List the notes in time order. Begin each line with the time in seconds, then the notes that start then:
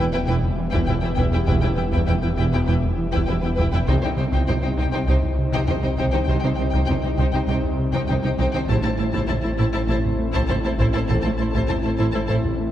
Already playing: E1 G3 B3 E4 G4 E5, impact
0.13 E2 E4 B4 G5
0.27 E1 E2 E3 E4 B4 G5
0.43 E2, taiko low
0.58 E3
0.71 E2 E3 E4 B4 G5, taiko
0.86 E1 E2 E4 B4 G5, taiko low
0.90 E4
1.01 E2 E3 B3 E4 B4 G5
1.16 E1 E2 E3 E4 B4 G5, taiko
1.32 E2 G3 E4 B4 G5
1.46 E1 E2 E3 E4 B4 G5, taiko
1.62 E2 E3 B3 E4 B4 G5
1.76 E1 E2 E3 B3 E4 B4 G5
1.92 E2 E3 E4 B4 G5, taiko
2.07 E1 E2 E4 B4 G5, taiko low
2.22 E2 E3 B3 E4 B4 G5
2.36 E1 E2 E3 E4 B4 G5
2.52 E2 E4 B4 G5, taiko rim
2.66 E1 E2 E3 E4 B4 G5
2.83 E2, taiko low
2.98 E3
3.12 E2 E3 E4 B4 G5, taiko
3.27 E1 E2 E4 B4 G5, taiko low
3.41 E2 E3 B3 E4 B4 G5
3.55 E1 E2 E3 B4 G5, taiko
3.60 E4
3.72 E2 G3 E4 B4 G5
3.87 C2 C3 G3 C4 D#4 C5 G5, taiko
4.02 C3 G3 D#4 C5 G5
4.17 C2 C3 G3 D#4 C5 G5
4.32 C2 C3 D#4 C5 G5, taiko
4.48 C2 C3 C4 D#4 C5 G5, taiko low
4.62 C3 G3 D#4 C5 G5
4.77 C2 C3 D#4 C5 G5
4.92 C2 C3 C4 D#4 C5 G5
5.07 C2 C3 D#4 C5 G5
5.23 C2, taiko low
5.38 C3
5.52 C2 C3 D#4 C5 G5, taiko
5.67 C2 C3 C4 D#4 C5 G5, taiko low
5.82 C3 G3 D#4 C5 G5
5.98 C2 C3 D#4 C5 G5, taiko
6.12 C2 C3 D#3 D#4 C5 G5
6.25 C2 C3 D#4 C5 G5, taiko
6.29 C3
6.40 G3 C5 G5
6.44 C3 D#4
6.55 C2 G3 G5
6.59 C3 D#4 C5
6.70 C2 C3 G5, taiko
6.74 D#4 C5
6.86 C2 C3 C4 D#4 C5 G5, taiko low
7.02 C3 G3 D#4 C5 G5
7.16 C2 C3 D#4 C5 G5
7.32 C2 C3 C4 D#4 C5 G5
7.47 C2 C3 D#4 C5 G5
7.64 C2, taiko low
7.79 C3
7.93 C2 C3 D#4 C5 G5, taiko
8.08 C2 C3 C4 D#4 C5 G5, taiko low
8.23 C3 G3 D#4 C5 G5
8.38 C2 C3 D#4 C5 G5, taiko
8.53 C2 C3 D#3 D#4 C5 G5
8.68 A1 A2 A3 C4 E4 C5 A5, taiko
8.83 A2 A3 E4 C5 A5
8.98 A1 A2 A3 E4 C5 A5
9.13 A2 A3 E4 C5 A5, taiko
9.27 A1 A2 E4 A4 C5 A5, taiko low
9.42 A2 A3 E4 C5 A5
9.57 A1 A2 A3 E4 C5 A5
9.73 A2 E4 A4 C5 A5
9.88 A1 A2 A3 E4 C5 A5
10.04 A2, taiko low
10.19 A3
10.33 A2 A3 E4 C5 A5, taiko
10.48 A1 A2 E4 A4 C5 A5, taiko low
10.64 A2 A3 E4 C5 A5
10.78 A1 A2 A3 E4 C5 A5, taiko
10.93 A2 C4 E4 C5 A5
11.08 A1 A2 A3 E4 C5 A5, taiko
11.21 A3 E4 C5 A5
11.26 A2
11.38 A1 A2 A3 E4 C5 A5
11.52 A2 A3 E4 C5 A5, taiko
11.68 A1 A2 E4 A4 C5 A5, taiko low
11.82 A2 A3 E4 C5 A5
11.97 A1 A2 A3 E4 C5 A5
12.12 A2 E4 A4 C5 A5
12.27 A1 A2 A3 E4 C5 A5
12.44 A2, taiko low
12.60 A3